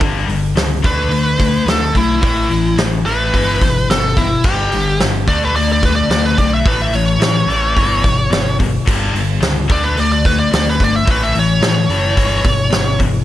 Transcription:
0.00 G1 G2 D3 G3, kick, open hi-hat
0.27 G1 G2 D3, open hi-hat
0.56 C#2 G2 D3, snare, open hi-hat
0.82 D2 D3 A3 D4 B4, kick, open hi-hat
1.09 D2 D3 A3, open hi-hat
1.39 D3 A3, kick, open hi-hat
1.66 D2 D3 A3 A4, snare, open hi-hat
1.93 B1 D3 A3, kick, open hi-hat
1.97 E4
2.21 A1 A2 E3 A3 E4, kick, open hi-hat
2.50 A1 A2 E3, open hi-hat
2.77 A1 A2 E3, snare, open hi-hat
3.06 A1 A2 E3 A3 B4, open hi-hat
3.33 G1 E2 B2 E3, kick, open hi-hat
3.61 G1 E2 B2, kick, open hi-hat
3.90 G1 E2 B2 A4, snare, open hi-hat
4.17 E2 B2 E4, kick, open hi-hat
4.44 G1 G2 D3 G3 G4, kick, crash
4.72 G1 G2 D3, open hi-hat
5.00 G1 G2 D3, snare, open hi-hat
5.27 D2 D3 A3 D4 D5, kick, open hi-hat
5.45 B4
5.54 D2 D3 A3 D5, open hi-hat
5.72 D5
5.83 D3 A3 B4, kick, open hi-hat
5.96 D5
6.10 D2 D3 A3 D5, snare, open hi-hat
6.26 B4
6.38 B1 D3 A3 D5, kick, open hi-hat
6.54 E5
6.65 A1 A2 E3 A3 B4, kick, open hi-hat
6.82 E5
6.91 A1 A2 E3 C#5, open hi-hat
7.19 A1 A2 E3, snare, open hi-hat
7.48 A1 A2 E3 A3, open hi-hat
7.76 G1 E2 B2 E3, kick, open hi-hat
8.04 G1 E2 B2, kick, open hi-hat
8.30 G1 E2 B2, snare, open hi-hat
8.59 E2 B2, kick, open hi-hat
8.86 G1 G2 D3 G3, kick, crash
9.14 G1 G2 D3, open hi-hat
9.40 C#2 G2 D3, snare, open hi-hat
9.68 D2 D3 A3 D4 D5, kick, open hi-hat
9.84 B4
9.96 D2 D3 A3 D5, open hi-hat
10.12 D5
10.25 D3 A3 B4, kick, open hi-hat
10.39 D5
10.51 D2 D3 A3 D5, snare, open hi-hat
10.70 B4
10.80 G1 D3 A3 D5, kick, open hi-hat
10.96 E5
11.05 A1 A2 E3 A3, kick, open hi-hat
11.11 B4
11.23 E5
11.34 A1 A2 E3, open hi-hat
11.39 C#5
11.61 A1 A2 E3, snare, open hi-hat
11.90 F#1 A2 E3 A3, open hi-hat
12.16 G1 E2 B2 E3, kick, open hi-hat
12.42 G1 E2 B2, kick, open hi-hat
12.70 G1 E2 B2, snare, open hi-hat
12.99 E2 B2, kick, open hi-hat

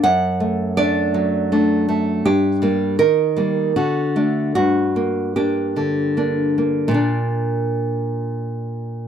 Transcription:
0.04 F#2 F#5
0.40 A3
0.77 A3 D4 D5
1.14 F#3
1.52 A3 D4
1.89 A3
2.25 G2 G4
2.62 G3 A#3
2.99 D#3 A#4
3.37 G3 A#3
3.76 D3 F#4
4.16 A3 D4
4.55 G2 F#4
4.96 A#3
5.36 A#3 D4 G4
5.76 D3
6.17 A#3 D4
6.58 A#3
6.88 A#2 A#3
6.94 D4

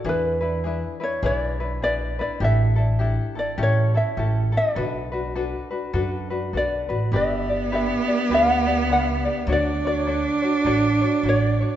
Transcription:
0.04 E2 D4 E4 G#4 B4
0.09 B4
0.41 D4 E4 B4
0.64 D4 E4 G#4 B4
1.00 D4 E4 B4 C#5
1.23 B1 D4 E4 G#4 B4 C#5
1.37 D5
1.60 D4 E4 B4
1.81 A#1 D4 E4 G#4 B4 D5
2.19 D4 E4 B4 D5
2.40 A1 D4 E4 G4 A4
2.44 E5
2.76 D4 E4 A4
2.99 D4 E4 G4 A4
3.35 D4 E4 A4 D5
3.58 A1 C#4 E4 G4 A4
3.63 C#5
3.94 C#4 E4 A4 E5
4.17 A1 C#4 E4 G4 A4
4.52 C#4 E4 A4
4.57 D5
4.75 B1 D4 F#4 A4 B4
5.12 D4 F#4 B4
5.35 D4 F#4 A4 B4
5.71 D4 F#4 B4
5.93 F#2 D4 F#4 A4 B4
6.30 D4 F#4 B4
6.53 B1 D4 F#4 A4 B4
6.57 D5
6.89 A1 D4 F#4 B4
7.12 G1 B3 D4 G4 B4 D5
7.16 E5
7.49 D4 G4 D5
7.72 D4 G4 B4 D5 E5
8.08 D4 G4 D5
8.29 D2 D4 G4 B4 D5
8.34 F#5
8.67 D4 G4 D5
8.88 C#2 D4 G4 B4 D5
8.93 E5
9.25 D4 G4 D5
9.47 D2 D4 F#4 A4 C#5
9.52 D5
9.85 D4 F#4 C#5
10.07 D4 F#4 A4 C#5
10.42 D4 F#4 C#5
10.65 A1 D4 F#4 A4 C#5
11.02 D4 F#4 C#5
11.23 A1 D4 F#4 A4 C#5
11.29 D5
11.61 D4 F#4 C#5

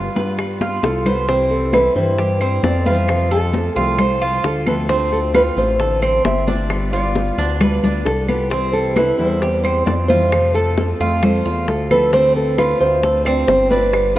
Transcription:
Already playing: G3 B3 F4
0.15 G2 B3 F4 B4, high bongo, high conga
0.38 G3 B3 F4, high bongo, high conga, claves
0.61 F4, high bongo, high conga
0.83 C2 A4, muted steel-string acoustic guitar stroke, high bongo, high conga
1.05 B3 F4 B4 C5, low bongo, low conga, claves
1.28 C3 E3 G3 C4 E4 C5, high bongo, high conga
1.51 A4, high bongo, high conga
1.72 E3 G3 C4 E4 B4, high bongo, high conga, claves
1.95 G2 E3 G3 C4 E4 C5, high conga
2.17 E3 G3 C4 E4 G4, high bongo, high conga
2.41 C4 C5, high bongo, high conga, claves
2.63 F2 D5, muted steel-string acoustic guitar stroke, high bongo, low bongo, high conga
2.85 E3 G3 C4 E4 F4 C5, high bongo, high conga
3.07 C3 F3 A3 C4 F4, high bongo, high conga, claves
3.31 A4, high conga
3.53 F3 A3 C4 F4, high bongo, high conga
3.75 C2 F3 A3 C4 F4 G4, high bongo, high conga
3.98 F3 A3 C4 F4 C5, high bongo, high conga, low conga, claves
4.21 F4, high bongo, high conga
4.43 D2 A4, muted steel-string acoustic guitar stroke, high bongo, low bongo, high conga
4.66 F3 A3 C4 F4 A4 B4, high bongo, high conga, claves
4.88 D3 A3 C4 F4 C5, high bongo, high conga
5.12 A4, high bongo, high conga
5.34 D3 A3 C4 F4 B4, high bongo, high conga, claves
5.56 A1 A3 C4 F4 C5, high conga
5.79 D3 A3 C4 F4 A4, high bongo, high conga
6.02 C4 C5, high bongo, high conga, claves
6.25 G1 E5, muted steel-string acoustic guitar stroke, high bongo, low bongo, high conga
6.47 A3 C4 D4 F4 D5, high bongo, high conga
6.69 G3 B3 F4, high bongo, high conga, claves
6.93 F4 D5, high conga
7.15 G3 B3 F4, high bongo, high conga
7.38 D2 B3 D4 F4, high bongo, high conga
7.61 G3 B3 F4 B4, high bongo, high conga, low conga, claves
7.83 D2 D4, high bongo, high conga, low conga
8.05 C2 A4, muted steel-string acoustic guitar stroke, high bongo, low bongo, high conga
8.28 B3 F4 G4 B4, high bongo, high conga, claves
8.50 C3 E3 G3 C4 E4 C5, high bongo, high conga
8.73 A4, high bongo, high conga
8.96 E3 G3 C4 E4 B4, high bongo, high conga, claves
9.18 E2 E3 G3 C4 E4 C5, high conga
9.42 E3 G3 C4 E4 G4, high bongo, high conga
9.63 C4 C5, high bongo, high conga, claves
9.86 F2 D5, muted steel-string acoustic guitar stroke, high bongo, low bongo, high conga
10.08 E3 G3 C4 E4 F4 C5, high bongo, high conga
10.32 C3 F3 A3 C4 F4, high bongo, high conga, claves
10.54 A4, high conga
10.77 F3 A3 C4 F4, high bongo, high conga
11.00 F2 F3 A3 C4 F4, high bongo, high conga
11.22 F3 A3 C4 F4 C5, high bongo, high conga, low conga, claves
11.45 E2 F4, high bongo, high conga
11.68 D2 A4, muted steel-string acoustic guitar stroke, high bongo, low bongo, high conga
11.90 F3 A3 C4 F4 A4 B4, high bongo, high conga, claves
12.12 D3 A3 C4 F4 C5, high bongo, high conga
12.36 A4, high bongo, high conga
12.57 D3 A3 C4 F4 B4, high bongo, high conga, claves
12.80 D2 A3 C4 F4 C5, high conga
13.02 D3 A3 C4 F4 A4, high bongo, high conga
13.25 C4 D5, high bongo, high conga, claves
13.47 G1 C5, muted steel-string acoustic guitar stroke, high bongo, low bongo, high conga
13.70 A3 C4 D4 F4 B4, high bongo, high conga
13.93 G3 B3 F4, high bongo, high conga, claves
14.16 B4

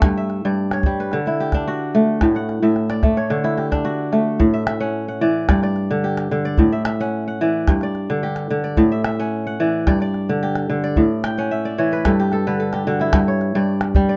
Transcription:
Already playing: A3 D4 E4 G4
0.02 G2, calabash thump, calabash click
0.17 E5
0.30 calabash click
0.45 G2 D5
0.71 C#5, calabash click
0.83 G3, calabash thump
1.00 B4
1.12 D3, calabash click
1.26 E4, calabash click
1.40 G4
1.52 D4, calabash thump, calabash click
1.67 F#4
1.95 A3
2.21 A2, calabash thump, calabash click
2.35 F#5, calabash click
2.49 calabash click
2.62 A2 E5
2.76 calabash click
2.90 D5, calabash click
3.03 A3, calabash thump, calabash click
3.17 C#5, calabash click
3.30 D3, calabash click
3.44 E4, calabash click
3.57 G4, calabash click
3.72 D4, calabash thump, calabash click
3.85 F#4
4.12 A3, calabash click
4.39 A2, calabash thump
4.54 E5
4.67 E5, calabash click
4.80 C#4 F#5
5.08 F#5
5.21 E3 D5
5.49 G2 D5, calabash thump, calabash click
5.63 D5, calabash click
5.76 calabash click
5.91 D3
6.04 G4
6.17 calabash click
6.31 D3
6.45 D5
6.58 A2, calabash thump
6.72 E5
6.85 E5, calabash click
7.00 C#4 F#5
7.28 F#5
7.41 E3 D5
7.68 G2, calabash thump, calabash click
7.81 D5, calabash click
7.95 calabash click
8.10 D3
8.23 G4
8.36 calabash click
8.50 D3
8.64 D5
8.77 A2, calabash thump
8.92 E5
9.04 E5, calabash click
9.19 C#4 F#5
9.47 F#5
9.60 E3 D5
9.87 G2 D5, calabash thump, calabash click
10.01 D5, calabash click
10.14 calabash click
10.29 D3
10.43 G4
10.55 calabash click
10.70 D3
10.84 D5
10.96 A2, calabash thump
11.24 G5, calabash click
11.38 C#4 F#5, calabash click
11.51 E5
11.65 D5
11.78 E3 C#5
11.92 B4, calabash click
12.05 G2 A4, calabash thump, calabash click
12.20 G4
12.32 A4, calabash click
12.47 D3 B4
12.60 A4
12.73 G4, calabash click
12.87 D3 F#4
13.00 E4, calabash click
13.13 G2, calabash thump, calabash click
13.28 C#5
13.41 calabash click
13.55 G2 D5
13.81 calabash click
13.95 G3, calabash thump
14.09 D5

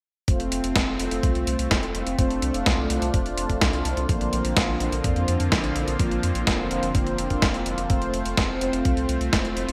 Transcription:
0.28 F1 A3 C4 F4 C5, kick, closed hi-hat
0.40 F1, closed hi-hat
0.52 F1, closed hi-hat
0.64 F1, closed hi-hat
0.76 F1, kick, snare, closed hi-hat
0.88 F1
0.99 F1 A3 C4 F4 C5, closed hi-hat
1.11 F1, closed hi-hat
1.23 C2, kick, closed hi-hat
1.35 C2, closed hi-hat
1.47 C2, closed hi-hat
1.59 C2, closed hi-hat
1.71 F1, kick, snare, closed hi-hat
1.83 F1, closed hi-hat
1.95 F1, closed hi-hat
2.07 F1, closed hi-hat
2.18 F1 A3 C4 D4 F4 C5, kick, closed hi-hat
2.31 F1, closed hi-hat
2.42 C2, closed hi-hat
2.54 F1, closed hi-hat
2.66 C2, kick, snare, closed hi-hat
2.78 C2
2.90 C2 A3 C4 F4 C5, closed hi-hat
3.02 C2, closed hi-hat
3.14 F1, kick, closed hi-hat
3.26 F1, closed hi-hat
3.38 F1, closed hi-hat
3.50 F1, kick, closed hi-hat
3.61 C2, kick, snare, closed hi-hat
3.73 C2, closed hi-hat
3.85 C2, closed hi-hat
3.97 C2, closed hi-hat
4.09 A#1 D3 F3 A#3 C4 D4 F4 C5, kick, closed hi-hat
4.21 A#1, closed hi-hat
4.33 A#1, closed hi-hat
4.45 A#1, closed hi-hat
4.57 A#1, kick, snare, closed hi-hat
4.69 A#1
4.80 A#1 A#3 D4 F4 C5, closed hi-hat
4.92 A#1, closed hi-hat
5.04 F2, kick, closed hi-hat
5.16 F2, closed hi-hat
5.28 F2, closed hi-hat
5.40 F2, closed hi-hat
5.52 A#1, kick, snare, closed hi-hat
5.64 A#1, closed hi-hat
5.76 A#1, closed hi-hat
5.88 A#1, closed hi-hat
5.99 A#1 A#3 D4 F4 C5, kick, closed hi-hat
6.11 A#1, closed hi-hat
6.23 F2, closed hi-hat
6.35 A#1, closed hi-hat
6.47 F1, kick, snare, closed hi-hat
6.59 F1
6.71 F1 A#3 D4 F4 C5, closed hi-hat
6.83 F1, closed hi-hat
6.95 F1, kick, closed hi-hat
7.07 F1, closed hi-hat
7.18 F1, closed hi-hat
7.30 F1 A#3 D4 F4 C5, kick, closed hi-hat
7.42 F1, kick, snare, closed hi-hat
7.54 F1, closed hi-hat
7.66 F1, closed hi-hat
7.78 F1, closed hi-hat
7.90 F1 A3 C4 F4 C5, kick, closed hi-hat
8.02 F1, closed hi-hat
8.14 F1, closed hi-hat
8.26 F1, closed hi-hat
8.37 F1, kick, snare, closed hi-hat
8.49 F1
8.61 F1 A3 C4 F4 C5, closed hi-hat
8.73 F1, closed hi-hat
8.85 C2, kick, closed hi-hat
8.97 C2, closed hi-hat
9.09 C2, closed hi-hat
9.21 C2, closed hi-hat
9.33 F1, kick, snare, closed hi-hat
9.45 F1, closed hi-hat
9.57 F1, closed hi-hat
9.69 F1, closed hi-hat

